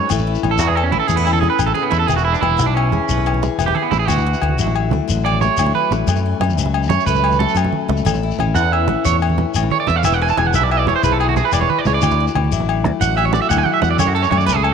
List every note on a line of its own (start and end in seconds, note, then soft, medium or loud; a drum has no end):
0.00 0.11 F#4 medium
0.00 low conga soft
0.09 0.36 A1 medium
0.09 1.07 A2 medium
0.09 0.58 E3 medium
0.09 0.43 C#4 medium
0.09 0.27 E4 medium
0.09 2.08 A4 medium
0.09 high conga medium
0.09 low agogo medium
0.09 shekere loud
0.18 low conga medium
0.18 shekere soft
0.27 0.59 E4 medium
0.35 shekere soft
0.43 0.59 A1 medium
0.43 0.91 C#4 medium
0.43 low conga medium
0.43 low agogo medium
0.51 0.59 A4 medium
0.51 high conga medium
0.58 0.92 E2 medium
0.58 2.08 E3 medium
0.58 1.08 E4 medium
0.58 0.68 F#4 medium
0.58 shekere loud
0.67 0.75 G#4 medium
0.67 low conga medium
0.75 0.84 A4 medium
0.75 low agogo medium
0.83 0.92 C#4 medium
0.92 0.98 A1 loud
0.92 1.07 C#4 medium
0.92 0.99 E4 medium
0.92 high conga medium
0.92 low conga medium
1.00 1.08 A4 medium
1.00 low conga soft
1.08 1.48 E2 medium
1.08 2.06 A2 medium
1.08 1.17 C#4 medium
1.08 1.17 G#4 medium
1.08 shekere loud
1.16 1.25 B3 medium
1.16 2.07 E4 soft
1.16 low conga medium
1.25 1.42 C#4 medium
1.25 1.33 E4 medium
1.25 low agogo medium
1.33 1.41 A4 loud
1.33 high conga medium
1.41 2.07 C#4 medium
1.41 1.49 G#4 medium
1.41 low conga medium
1.50 1.58 B4 medium
1.59 1.72 A1 medium
1.59 1.74 B2 medium
1.59 low agogo medium
1.59 shekere medium
1.66 1.74 A4 medium
1.66 low conga medium
1.74 1.90 C#3 medium
1.74 1.83 G#4 medium
1.74 high conga medium
1.74 low conga soft
1.83 1.91 B3 medium
1.83 low conga soft
1.91 2.05 E2 medium
1.91 2.08 D3 medium
1.91 1.99 E4 medium
1.91 low conga medium
1.91 shekere soft
1.99 2.08 A4 loud
1.99 low conga soft
2.08 2.35 E1 loud
2.08 3.09 E3 medium
2.08 2.57 E4 medium
2.08 2.16 G#4 medium
2.08 high conga medium
2.08 low agogo medium
2.08 shekere medium
2.16 2.24 F#4 medium
2.16 low conga medium
2.16 shekere soft
2.25 2.33 E4 loud
2.33 2.42 D4 medium
2.33 shekere soft
2.41 2.59 E1 loud
2.41 2.65 E4 medium
2.41 low conga medium
2.41 low agogo medium
2.51 high conga medium
2.57 2.92 B1 medium
2.57 3.58 E4 medium
2.57 shekere medium
2.66 2.74 D4 medium
2.66 low conga medium
2.74 3.41 C#4 medium
2.74 low agogo medium
2.92 2.98 E1 loud
2.92 3.41 G#4 medium
2.92 high conga medium
2.92 low conga medium
3.01 low conga soft
3.09 3.47 B1 medium
3.09 4.58 E3 medium
3.09 3.25 B4 medium
3.09 shekere medium
3.18 low conga medium
3.26 muted steel-string acoustic guitar stroke medium
3.26 low agogo medium
3.34 high conga medium
3.42 4.07 G#4 medium
3.42 low conga medium
3.42 shekere soft
3.58 3.71 E1 medium
3.58 4.07 E4 medium
3.58 4.07 B4 medium
3.58 low agogo medium
3.58 shekere medium
3.66 3.75 G4 medium
3.66 low conga medium
3.75 3.83 G#4 loud
3.75 high conga medium
3.75 low conga soft
3.82 3.91 B3 medium
3.82 low conga soft
3.91 4.04 A1 medium
3.91 3.99 E4 medium
3.91 low conga loud
3.91 shekere soft
3.99 4.08 G#4 medium
3.99 low conga soft
4.07 4.34 D2 medium
4.07 5.06 D3 medium
4.07 4.25 E4 medium
4.07 4.74 F#4 medium
4.07 high conga loud
4.07 low agogo medium
4.07 shekere loud
4.16 low conga medium
4.16 shekere soft
4.26 muted steel-string acoustic guitar stroke medium
4.34 shekere soft
4.42 4.59 D2 medium
4.42 muted steel-string acoustic guitar stroke medium
4.42 low agogo medium
4.49 high conga medium
4.58 4.93 A1 medium
4.58 5.58 F#3 medium
4.58 5.25 E4 medium
4.58 shekere medium
4.67 low conga medium
4.76 low agogo medium
4.91 4.99 D2 loud
4.91 5.42 A3 medium
4.91 high conga medium
4.91 low conga medium
5.00 low conga soft
5.08 5.48 A1 medium
5.08 6.05 D3 medium
5.08 6.08 F#4 medium
5.08 shekere loud
5.16 low conga medium
5.25 5.41 D5 medium
5.25 muted steel-string acoustic guitar stroke medium
5.25 low agogo medium
5.33 high conga medium
5.41 5.91 A3 medium
5.41 5.72 C#5 medium
5.41 low conga medium
5.41 shekere soft
5.57 5.71 D2 medium
5.57 6.06 F#3 medium
5.57 6.06 E4 medium
5.57 low agogo medium
5.57 shekere medium
5.66 low conga medium
5.75 5.91 B4 medium
5.75 high conga medium
5.75 low conga soft
5.91 6.03 A1 medium
5.91 6.43 A3 medium
5.91 low conga medium
5.91 shekere soft
6.00 low conga soft
6.07 6.33 F#2 loud
6.07 7.06 F#2 medium
6.07 muted steel-string acoustic guitar stroke medium
6.07 high conga medium
6.07 low agogo medium
6.07 shekere loud
6.16 low conga medium
6.16 shekere soft
6.26 6.59 C#4 medium
6.40 6.58 F#2 medium
6.40 6.90 A3 medium
6.40 low conga medium
6.40 low agogo medium
6.49 high conga medium
6.49 shekere soft
6.58 6.91 C#2 medium
6.58 7.53 F#3 medium
6.58 7.24 C#4 medium
6.58 shekere loud
6.66 low conga medium
6.74 low agogo medium
6.83 shekere soft
6.89 6.97 F#2 loud
6.89 7.39 A3 medium
6.89 7.06 C#5 loud
6.89 high conga medium
6.89 low conga medium
6.89 shekere soft
7.00 shekere soft
7.06 7.45 C#2 loud
7.06 8.04 F#2 medium
7.06 8.05 A4 medium
7.06 7.37 B4 medium
7.06 shekere medium
7.15 low conga medium
7.15 shekere soft
7.24 7.54 C#4 medium
7.24 low agogo medium
7.31 high conga medium
7.31 low conga soft
7.31 shekere soft
7.39 7.87 A3 medium
7.39 7.55 A4 medium
7.39 low conga loud
7.49 shekere soft
7.54 7.68 F#2 medium
7.54 8.03 F#3 medium
7.54 8.22 C#4 medium
7.54 low agogo medium
7.54 shekere medium
7.64 low conga medium
7.72 high conga medium
7.81 low conga soft
7.88 8.02 C#2 medium
7.88 8.39 A3 medium
7.88 low conga loud
7.97 low conga soft
7.97 shekere soft
8.05 8.31 A1 loud
8.05 9.04 A2 medium
8.05 9.04 A4 medium
8.05 high conga medium
8.05 low agogo medium
8.05 shekere medium
8.14 low conga medium
8.14 shekere soft
8.23 8.56 E4 medium
8.31 shekere soft
8.39 8.54 A1 medium
8.39 8.88 C#4 medium
8.39 low conga medium
8.39 low agogo medium
8.47 high conga medium
8.54 8.88 E2 medium
8.54 9.54 E3 medium
8.54 9.22 E4 medium
8.54 8.72 F#5 loud
8.54 shekere medium
8.72 9.05 E5 medium
8.72 low agogo medium
8.88 8.95 A1 loud
8.88 9.37 C#4 medium
8.88 high conga medium
8.88 low conga medium
8.96 low conga soft
9.05 9.44 E2 medium
9.05 10.02 A2 medium
9.05 10.02 A4 medium
9.05 9.15 C#5 loud
9.05 shekere loud
9.12 low conga medium
9.22 9.55 E4 medium
9.22 low agogo medium
9.30 high conga medium
9.38 9.88 C#4 medium
9.38 low conga medium
9.54 9.68 A1 medium
9.54 10.06 E3 medium
9.54 10.37 E4 soft
9.54 low agogo medium
9.54 shekere loud
9.63 low conga medium
9.71 9.79 C#5 loud
9.71 high conga medium
9.71 low conga soft
9.80 9.88 D5 medium
9.80 low conga soft
9.87 10.01 E2 medium
9.87 10.03 C#4 medium
9.87 9.96 E5 loud
9.87 low conga medium
9.87 shekere soft
9.95 10.04 F5 medium
9.95 low conga soft
10.03 10.30 E1 loud
10.03 11.03 E3 medium
10.03 10.20 B4 medium
10.03 10.14 E5 loud
10.03 high conga medium
10.03 low agogo medium
10.03 shekere loud
10.12 10.21 F#5 medium
10.12 low conga medium
10.12 shekere soft
10.22 10.54 B4 medium
10.22 10.30 G#5 loud
10.28 10.37 A5 loud
10.28 shekere soft
10.37 10.54 E1 medium
10.37 10.87 G#4 medium
10.37 10.47 G#5 loud
10.37 low conga medium
10.37 low agogo medium
10.45 10.54 F#5 loud
10.45 high conga medium
10.54 10.87 B1 loud
10.54 11.20 E4 medium
10.54 11.52 B4 medium
10.54 10.63 E5 loud
10.54 shekere loud
10.62 10.71 D5 medium
10.62 low conga medium
10.71 10.79 E5 loud
10.71 low agogo medium
10.79 10.87 D5 medium
10.87 10.93 E1 loud
10.87 11.03 G#4 medium
10.87 10.95 C#5 medium
10.87 high conga loud
10.87 low conga loud
10.96 11.03 C5 medium
11.03 11.41 B1 loud
11.03 12.51 E3 medium
11.03 11.86 G#4 medium
11.03 11.12 B4 medium
11.03 shekere loud
11.12 11.20 A4 medium
11.12 low conga medium
11.20 11.36 E4 medium
11.20 11.28 G#4 medium
11.20 low agogo medium
11.29 11.36 F#4 medium
11.29 high conga medium
11.36 11.52 E4 medium
11.36 11.44 G#4 medium
11.36 low conga loud
11.36 shekere soft
11.45 11.53 B4 medium
11.52 11.65 E1 medium
11.52 12.00 E4 medium
11.52 12.01 B4 medium
11.52 11.61 D5 loud
11.52 low agogo medium
11.52 shekere medium
11.61 11.70 C#5 medium
11.61 low conga medium
11.70 11.79 B4 loud
11.70 high conga medium
11.70 low conga soft
11.79 11.86 D5 loud
11.79 low conga soft
11.85 11.98 C#2 medium
11.85 12.01 G#4 medium
11.85 11.94 C#5 loud
11.85 low conga loud
11.85 shekere soft
11.94 12.25 D5 medium
11.94 low conga soft
12.02 12.27 D2 loud
12.02 13.00 D3 medium
12.02 13.02 F#4 medium
12.02 high conga loud
12.02 low agogo medium
12.02 shekere loud
12.11 low conga medium
12.11 shekere soft
12.20 12.51 E4 medium
12.28 shekere soft
12.35 12.52 D2 medium
12.35 low conga loud
12.35 low agogo medium
12.45 high conga medium
12.52 12.84 A1 loud
12.52 13.50 F#3 medium
12.52 13.17 E4 medium
12.52 shekere loud
12.60 low conga medium
12.69 low agogo medium
12.84 12.90 D2 loud
12.84 13.35 A3 medium
12.84 high conga loud
12.84 low conga medium
12.93 low conga soft
13.00 13.39 A1 loud
13.00 13.97 D3 medium
13.00 14.00 F#4 medium
13.00 13.17 F#5 medium
13.00 shekere loud
13.17 13.51 E4 medium
13.17 13.25 E5 loud
13.17 low agogo medium
13.25 13.33 C#5 loud
13.25 high conga medium
13.33 14.32 A3 medium
13.33 13.41 D5 loud
13.33 low conga loud
13.33 shekere soft
13.42 13.49 E5 loud
13.49 13.63 D2 medium
13.49 13.98 F#3 medium
13.49 13.98 E4 medium
13.49 13.58 F#5 loud
13.49 low agogo medium
13.49 shekere loud
13.57 13.66 G#5 loud
13.57 low conga medium
13.66 13.73 F#5 loud
13.66 high conga loud
13.66 low conga soft
13.74 13.82 E5 medium
13.74 low conga soft
13.82 13.95 E2 medium
13.82 13.90 F#5 loud
13.82 low conga loud
13.82 shekere soft
13.91 13.99 D5 loud
13.91 low conga soft
13.98 14.74 F#2 medium
13.98 14.24 F#2 loud
13.98 14.74 A4 medium
13.98 14.07 C#5 loud
13.98 high conga loud
13.98 low agogo medium
13.98 shekere loud
14.07 14.14 F#4 medium
14.07 low conga medium
14.15 14.46 C#4 medium
14.15 14.23 A4 loud
14.23 14.30 C#5 medium
14.23 shekere soft
14.31 14.49 F#2 loud
14.31 14.74 A3 medium
14.31 14.39 C#5 loud
14.31 low conga loud
14.31 low agogo medium
14.38 14.46 D5 loud
14.38 high conga medium
14.38 low conga soft
14.38 shekere soft
14.46 14.74 C#2 medium
14.46 14.74 C#4 medium
14.46 14.56 B4 loud
14.46 muted steel-string acoustic guitar stroke medium
14.46 shekere loud
14.56 14.64 G#4 medium
14.56 low conga medium
14.64 14.72 A4 loud
14.64 low agogo medium